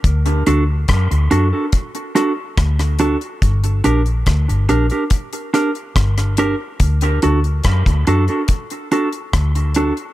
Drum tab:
HH |xxx-xxx-xxx-xxxx|xxxxxxxxxxxxxxx-|xxxxxxxxxxxxxxxx|
SD |----r-----r-rr--|----r-----r-rr--|----r-------r---|
BD |o---o---o---o---|o---o---o---o---|o---oo--o---o---|